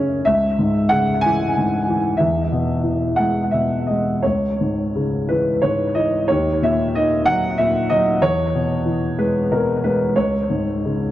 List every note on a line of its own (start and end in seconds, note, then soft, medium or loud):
0.00 0.22 F#2 medium
0.00 0.27 C#3 soft
0.00 0.22 A#3 soft
0.00 0.27 C#4 medium
0.00 0.27 C#5 medium
0.00 0.27 D#5 medium
0.00 0.25 E5 medium
0.25 2.16 C#2 medium
0.25 0.92 E5 medium
0.59 1.56 G#2 soft
0.89 2.16 C#3 medium
0.89 1.24 F#5 medium
1.21 2.14 G#5 loud
1.26 1.87 E3 medium
1.57 2.18 G#2 soft
1.89 2.19 E3 soft
2.17 4.21 E2 medium
2.17 2.87 E5 medium
2.52 3.52 B2 soft
2.83 4.21 E3 soft
3.16 3.88 G#3 soft
3.16 3.54 F#5 medium
3.51 4.23 B2 soft
3.51 3.89 E5 medium
3.87 4.24 G#3 soft
3.87 4.25 D#5 medium
4.23 6.25 C#2 soft
4.23 4.90 C#5 medium
4.60 5.62 G#2 soft
4.95 6.25 C#3 soft
5.29 5.95 E3 soft
5.29 5.64 B4 medium
5.62 6.27 G#2 soft
5.62 5.97 C#5 medium
5.95 6.28 E3 soft
5.95 6.29 D#5 medium
6.28 8.19 D#2 medium
6.28 6.62 C#5 medium
6.62 7.57 A#2 soft
6.62 6.96 E5 medium
6.95 8.19 D#3 soft
6.95 7.28 D#5 medium
7.26 7.90 F#3 medium
7.26 7.56 F#5 loud
7.58 8.21 A#2 soft
7.58 7.91 E5 medium
7.90 8.22 F#3 medium
7.90 8.23 D#5 medium
8.22 10.12 E2 medium
8.22 9.21 C#5 medium
8.55 9.50 B2 medium
8.85 10.12 E3 medium
9.18 9.83 G#3 medium
9.18 9.49 B4 medium
9.52 10.14 B2 soft
9.52 9.85 A#4 medium
9.84 10.15 G#3 soft
9.84 10.17 B4 medium
10.16 11.12 C#2 medium
10.16 11.12 C#5 medium
10.50 11.12 G#2 soft
10.85 11.12 C#3 soft